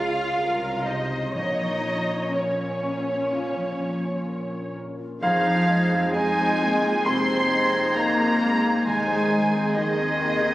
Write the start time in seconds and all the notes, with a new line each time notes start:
Already playing: C#2 C#3 F3 G#3 C#4 F4 G#4 C#5 F5
0.16 F4
0.37 C2 C3 G#4 A#4
0.62 C#5
0.85 D#4 G#4 C5 D#5
1.11 F4
1.34 A#1 A#2 D#4 C#5 D#5
1.60 F3
1.85 C#4
2.09 F4
2.33 C#4 A#4 C#5
2.60 C#5
2.84 A#4
3.08 F4
3.32 A#2 F4 F5
3.56 F3
3.80 C#4
4.04 F4
4.28 A#4
4.51 C#5
4.76 A#4
4.99 F4
5.22 F2 D#3 F3 D#4 G#4 C5 F5 G#6
5.44 F3 D#4 C5
5.67 G#3 G#4 D#5
5.90 C4 G#4 C5
6.12 G#3 D#4 C5 D#5 G#5 G#6
6.36 F3 G#5
6.40 C4
6.59 D#3 A#3 D#5
6.82 F3 C4
7.05 C3 G#3 C4 D#4 C5 C6 G#6
7.28 C4 D#4 C5
7.51 G#3 G#4 D#5
7.74 F3 G#4 C5
7.96 D#3 A#3 D#5 A#5
8.19 F3 C4 G#5
8.40 G#3 A#3 D#5
8.62 C4 C5
8.84 D#2 C3 D#3 G#3 D#4 G#4 C5 G#5 G#6
9.07 D#3 D#4 C5
9.30 G#3 G#4 D#5
9.52 C4 G#4 C5
9.74 D#3 G#3 D#4 C5 D#5 G#6
9.97 D#3 C4 G#5
10.19 C3 A#3 D#5
10.42 D#3 C4